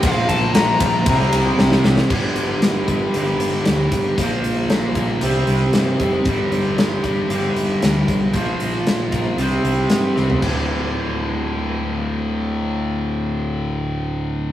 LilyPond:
<<
  \new Staff \with { instrumentName = "Lead electric guitar" } { \time 4/4 \key d \minor \tempo 4 = 115 f''8 a''8 bes''2~ bes''8 r8 | r1 | r1 | r1 |
r1 | r1 | r1 | }
  \new Staff \with { instrumentName = "Distorted electric guitar" } { \clef bass \time 4/4 \key d \minor <bes, f bes>2 <c g c'>2 | <g, d g>4. <g, d g>2~ <g, d g>8 | <bes, f bes>4. <bes, f bes>8 <c g c'>4. <c g c'>8 | <g, d g>4. <g, d g>2~ <g, d g>8 |
<bes, f bes>4. <bes, f bes>8 <c g c'>4. <c g c'>8 | <d, a, d>1~ | <d, a, d>1 | }
  \new Staff \with { instrumentName = "Overdriven electric guitar" } { \clef bass \time 4/4 \key d \minor <bes, f bes>2 <c g c'>2 | <g, d g>2 <g, d g>2 | <bes, f bes>2 <c g c'>2 | <g, d g>2 <g, d g>2 |
<bes, f bes>2 <c g c'>2 | <d, a, d>1~ | <d, a, d>1 | }
  \new Staff \with { instrumentName = "Fingered electric bass" } { \clef bass \time 4/4 \key d \minor bes,,8 bes,,8 bes,,8 bes,,8 c,8 c,8 c,8 c,8 | g,,8 g,,8 g,,8 g,,8 g,,8 g,,8 d,8 g,,8 | bes,,8 bes,,8 bes,,8 bes,,8 c,8 c,8 g,8 f,,8 | g,,8 g,,8 g,,8 g,,8 g,,8 g,,8 d,8 b,,8 |
bes,,8 bes,,8 bes,,8 bes,,8 c,8 c,8 g,8 c,8 | d,,1~ | d,,1 | }
  \new DrumStaff \with { instrumentName = "Drums" } \drummode { \time 4/4 <bd cymr>8 <bd cymr>8 <cymr sn>8 <bd cymr>8 <bd cymr>16 sn16 cymr8 sn16 sn16 sn16 sn16 | <cymc bd>8 hh8 <hh sn>8 <hh bd>8 hh8 hh16 sn16 <hh sn>8 <hh bd>8 | <hh bd>8 hh8 <hh sn>8 <hh bd>8 hh8 hh8 <hh sn>8 <hh bd>8 | <hh bd>8 hh8 <hh sn>8 <hh bd>8 hh8 hh8 <hh sn>8 <hh bd>8 |
<hh bd>8 hh8 <hh sn>8 <hh bd>8 hh8 hh8 <hh sn>8 sn16 tomfh16 | <cymc bd>4 r4 r4 r4 | r4 r4 r4 r4 | }
>>